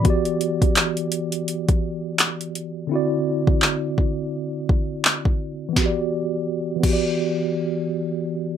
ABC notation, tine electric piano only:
X:1
M:4/4
L:1/8
Q:"Swing 16ths" 1/4=84
K:Em
V:1 name="Tine electric piano"
[E,B,FGd]8 | [D,CEFd]8 | [E,B,FGd] z2 [E,B,FGd]4- [E,B,FGd] |]